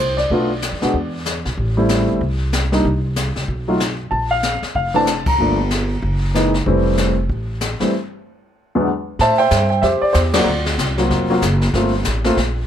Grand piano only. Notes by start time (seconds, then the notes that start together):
Already playing: C5
0.17 D5
0.31 A3 B3 D4 F4
0.82 G#3 B3 D4 F#4
1.77 G3 A3 C4 E4
2.72 G3 A#3 D4 D#4
3.68 F#3 A3 D#4 F4
4.11 A5
4.31 F5
4.76 F5
4.94 E3 A3 C4 D4 A5
5.28 A#5
5.40 F3 A3 A#3 D4
6.34 E3 G#3 A#3 D#4
6.66 E3 G3 A3 C4
7.80 E3 G3 A3 C4
8.75 E2 D3 F#3 G#3 B3
9.21 C5 E5 A5
9.38 C5 E5 G5
9.70 G5
9.82 G4 C5 E5
10.02 D5
10.13 C5
10.34 F#3 A#3 C4 F4 F#4 D5
10.98 F#3 A#3 C4 F4
11.30 F#3 A#3 C4 F4
11.74 A3 A#3 C4 F4
12.24 A3 A#3 C4 F4